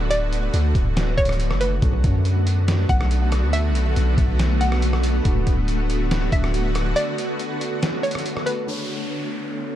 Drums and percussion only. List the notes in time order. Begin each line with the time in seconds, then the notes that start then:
0.11 closed hi-hat
0.33 closed hi-hat
0.54 closed hi-hat
0.75 kick, closed hi-hat
0.97 snare, closed hi-hat
1.18 kick, closed hi-hat
1.25 cross-stick, closed hi-hat
1.33 closed hi-hat
1.40 closed hi-hat
1.51 cross-stick
1.61 closed hi-hat
1.82 kick, closed hi-hat
2.04 kick, closed hi-hat
2.25 closed hi-hat
2.47 closed hi-hat
2.68 snare, closed hi-hat
2.89 kick, closed hi-hat
3.01 cross-stick
3.11 closed hi-hat
3.32 cross-stick, closed hi-hat
3.54 closed hi-hat
3.75 closed hi-hat
3.96 closed hi-hat
4.18 kick, closed hi-hat
4.39 snare, closed hi-hat
4.61 closed hi-hat
4.72 cross-stick
4.82 closed hi-hat
4.93 cross-stick
5.03 closed hi-hat
5.25 kick, closed hi-hat
5.47 kick, closed hi-hat
5.68 closed hi-hat
5.90 closed hi-hat
6.11 snare, closed hi-hat
6.32 kick, closed hi-hat
6.44 cross-stick
6.54 closed hi-hat
6.75 cross-stick, closed hi-hat
6.97 closed hi-hat
7.18 closed hi-hat
7.39 closed hi-hat
7.61 closed hi-hat
7.83 snare, closed hi-hat
8.04 closed hi-hat
8.11 closed hi-hat
8.15 cross-stick, closed hi-hat
8.26 closed hi-hat
8.37 cross-stick
8.47 closed hi-hat